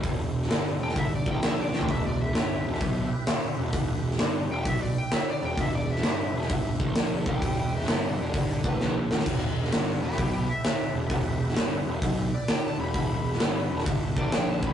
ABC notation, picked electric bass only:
X:1
M:4/4
L:1/8
Q:"Swing" 1/4=130
K:Em
V:1 name="Picked electric bass" clef=bass
E,,,2 G,,, E,,, G,,, A,,, ^A,,, =A,,, | E,,,2 G,,, E,,, B,,, z2 E,,, | E,,,2 G,,, E,,, B,,, z2 E,,, | E,,,2 G,,, E,,, G,,, A,,, ^A,,, =A,,, |
E,,,2 G,,, E,,, G,,, A,,, ^A,,, =A,,, | E,,,2 G,,, E,,, B,,, z2 E,,, | E,,,2 G,,, E,,, B,,, z2 E,,, | E,,,2 G,,, E,,, G,,, A,,, ^A,,, =A,,, |]